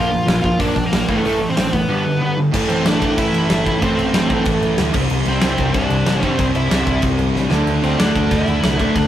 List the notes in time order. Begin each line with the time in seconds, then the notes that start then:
Already playing: A#1 A#3 F4 F5
0.10 A#2 F3
0.27 A#1 A#2 F3, snare, open hi-hat
0.42 A#1 A#2 F3 F4 F5, kick
0.58 A#1 A#2 F3 A#3 D4 D5, kick, open hi-hat
0.75 A#1 A#2 F3, kick
0.86 A#3 A#4
0.92 A#1 A#2 F3, snare, open hi-hat
1.07 A1 A2 E3 A3, kick
1.17 A3 A4
1.23 A1 A2 E3 A3 A4, open hi-hat
1.40 A2 E3
1.49 C4 C5
1.56 A1 A2 E3 C4 C5, snare, open hi-hat
1.72 F#1 A2 E3 B3 B4, kick
1.88 G2 D3 G3
2.05 G2 D3
2.20 G2 D3
2.37 G2 D3
2.53 A1 A2 E3 A3, kick, crash
2.69 A1 C4 C5, crash
2.85 A1 D4 D5, snare, crash
3.00 A1 A2 E3 A3, kick, crash
3.18 A1 E4 E5, kick, crash
3.33 A1, crash
3.50 G1, snare, crash
3.66 kick, crash
3.81 A1 A2 E3 A3 C4 C5, kick, crash
3.98 A1, crash
4.14 A1, snare, crash
4.29 A1 A2 E3 A3, kick, crash
4.45 A1, kick, crash
4.62 A1, crash
4.78 D2, snare, crash
4.93 C2 C3 G3 C4, kick, crash
5.10 C2, crash
5.25 C2 C4, crash
5.29 C5
5.41 C2 C3 G3 C4, snare, crash
5.58 C2, kick, crash
5.74 C2 D4 D5, kick, crash
5.90 C2, crash
6.06 A1, snare, crash
6.22 C3 G3 C4 C5, kick, crash
6.38 C2 C4 C5, kick, crash
6.55 C2 E4 E5, crash
6.70 C2 C3 G3 C4, snare, crash
6.86 C2, kick, crash
7.02 C2, kick, crash
7.18 C2, crash
7.35 A1, snare
7.50 D2 D3 A3 D4, snare
7.66 D2, crash
7.83 D2 C4 C5, crash
7.98 D2 D3 A3 D4 D5, snare, crash
8.15 D2, kick, crash
8.31 D2 E4 E5, kick, crash
8.47 D2, crash
8.63 C2, snare, crash
8.78 D3 A3 D4, kick, crash
8.95 D2 D4 D5, kick, crash